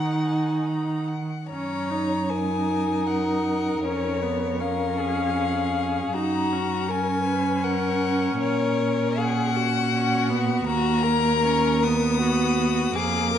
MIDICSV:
0, 0, Header, 1, 5, 480
1, 0, Start_track
1, 0, Key_signature, 6, "major"
1, 0, Tempo, 831025
1, 872, Time_signature, 3, 2, 24, 8
1, 872, Tempo, 782269
1, 1832, Tempo, 768246
1, 3752, Tempo, 744417
1, 5192, Tempo, 803213
1, 5672, Tempo, 741656
1, 6632, Tempo, 778210
1, 7592, Tempo, 735294
1, 8349, End_track
2, 0, Start_track
2, 0, Title_t, "Violin"
2, 0, Program_c, 0, 40
2, 0, Note_on_c, 0, 78, 36
2, 144, Note_on_c, 0, 80, 33
2, 153, Note_off_c, 0, 78, 0
2, 383, Note_on_c, 0, 82, 34
2, 392, Note_off_c, 0, 80, 0
2, 625, Note_on_c, 0, 78, 37
2, 634, Note_off_c, 0, 82, 0
2, 862, Note_off_c, 0, 78, 0
2, 865, Note_on_c, 0, 82, 60
2, 1354, Note_on_c, 0, 80, 63
2, 1363, Note_off_c, 0, 82, 0
2, 1832, Note_on_c, 0, 78, 59
2, 1842, Note_off_c, 0, 80, 0
2, 2305, Note_off_c, 0, 78, 0
2, 2308, Note_on_c, 0, 73, 63
2, 2785, Note_on_c, 0, 77, 68
2, 2794, Note_off_c, 0, 73, 0
2, 3752, Note_off_c, 0, 77, 0
2, 3757, Note_on_c, 0, 82, 71
2, 4240, Note_on_c, 0, 80, 74
2, 4250, Note_off_c, 0, 82, 0
2, 4713, Note_on_c, 0, 78, 70
2, 4723, Note_off_c, 0, 80, 0
2, 5194, Note_off_c, 0, 78, 0
2, 5201, Note_on_c, 0, 73, 77
2, 5680, Note_on_c, 0, 78, 87
2, 5690, Note_off_c, 0, 73, 0
2, 6626, Note_off_c, 0, 78, 0
2, 6630, Note_on_c, 0, 82, 102
2, 7351, Note_on_c, 0, 87, 92
2, 7361, Note_off_c, 0, 82, 0
2, 8066, Note_off_c, 0, 87, 0
2, 8070, Note_on_c, 0, 86, 108
2, 8349, Note_off_c, 0, 86, 0
2, 8349, End_track
3, 0, Start_track
3, 0, Title_t, "Violin"
3, 0, Program_c, 1, 40
3, 0, Note_on_c, 1, 78, 43
3, 633, Note_off_c, 1, 78, 0
3, 866, Note_on_c, 1, 73, 39
3, 1357, Note_on_c, 1, 70, 47
3, 1367, Note_off_c, 1, 73, 0
3, 2786, Note_off_c, 1, 70, 0
3, 2790, Note_on_c, 1, 70, 44
3, 3032, Note_on_c, 1, 68, 43
3, 3041, Note_off_c, 1, 70, 0
3, 3260, Note_off_c, 1, 68, 0
3, 3263, Note_on_c, 1, 68, 45
3, 3748, Note_on_c, 1, 66, 50
3, 3758, Note_off_c, 1, 68, 0
3, 4231, Note_on_c, 1, 70, 50
3, 4240, Note_off_c, 1, 66, 0
3, 4469, Note_off_c, 1, 70, 0
3, 4472, Note_on_c, 1, 71, 45
3, 4706, Note_on_c, 1, 70, 53
3, 4715, Note_off_c, 1, 71, 0
3, 5182, Note_off_c, 1, 70, 0
3, 5186, Note_on_c, 1, 70, 55
3, 5668, Note_on_c, 1, 68, 55
3, 5678, Note_off_c, 1, 70, 0
3, 5914, Note_on_c, 1, 66, 53
3, 5924, Note_off_c, 1, 68, 0
3, 6624, Note_off_c, 1, 66, 0
3, 6627, Note_on_c, 1, 66, 64
3, 6858, Note_on_c, 1, 70, 67
3, 6867, Note_off_c, 1, 66, 0
3, 7581, Note_off_c, 1, 70, 0
3, 7584, Note_on_c, 1, 66, 64
3, 8070, Note_on_c, 1, 68, 66
3, 8080, Note_off_c, 1, 66, 0
3, 8308, Note_off_c, 1, 68, 0
3, 8312, Note_on_c, 1, 70, 68
3, 8349, Note_off_c, 1, 70, 0
3, 8349, End_track
4, 0, Start_track
4, 0, Title_t, "Viola"
4, 0, Program_c, 2, 41
4, 0, Note_on_c, 2, 63, 48
4, 614, Note_off_c, 2, 63, 0
4, 876, Note_on_c, 2, 61, 43
4, 1113, Note_on_c, 2, 63, 40
4, 1123, Note_off_c, 2, 61, 0
4, 1356, Note_off_c, 2, 63, 0
4, 1363, Note_on_c, 2, 63, 45
4, 2313, Note_on_c, 2, 61, 49
4, 2322, Note_off_c, 2, 63, 0
4, 2552, Note_on_c, 2, 59, 43
4, 2562, Note_off_c, 2, 61, 0
4, 2783, Note_on_c, 2, 61, 47
4, 2792, Note_off_c, 2, 59, 0
4, 3751, Note_off_c, 2, 61, 0
4, 3757, Note_on_c, 2, 63, 51
4, 3999, Note_on_c, 2, 61, 49
4, 4009, Note_off_c, 2, 63, 0
4, 6150, Note_off_c, 2, 61, 0
4, 6154, Note_on_c, 2, 61, 59
4, 6393, Note_on_c, 2, 59, 59
4, 6403, Note_off_c, 2, 61, 0
4, 6636, Note_on_c, 2, 58, 58
4, 6645, Note_off_c, 2, 59, 0
4, 7110, Note_on_c, 2, 61, 60
4, 7119, Note_off_c, 2, 58, 0
4, 7357, Note_on_c, 2, 59, 63
4, 7366, Note_off_c, 2, 61, 0
4, 8068, Note_off_c, 2, 59, 0
4, 8072, Note_on_c, 2, 58, 68
4, 8349, Note_off_c, 2, 58, 0
4, 8349, End_track
5, 0, Start_track
5, 0, Title_t, "Cello"
5, 0, Program_c, 3, 42
5, 0, Note_on_c, 3, 51, 38
5, 729, Note_off_c, 3, 51, 0
5, 867, Note_on_c, 3, 42, 43
5, 2281, Note_off_c, 3, 42, 0
5, 2303, Note_on_c, 3, 41, 47
5, 3724, Note_off_c, 3, 41, 0
5, 3749, Note_on_c, 3, 42, 46
5, 5165, Note_off_c, 3, 42, 0
5, 5189, Note_on_c, 3, 46, 55
5, 6605, Note_off_c, 3, 46, 0
5, 6630, Note_on_c, 3, 39, 67
5, 8045, Note_off_c, 3, 39, 0
5, 8066, Note_on_c, 3, 41, 65
5, 8349, Note_off_c, 3, 41, 0
5, 8349, End_track
0, 0, End_of_file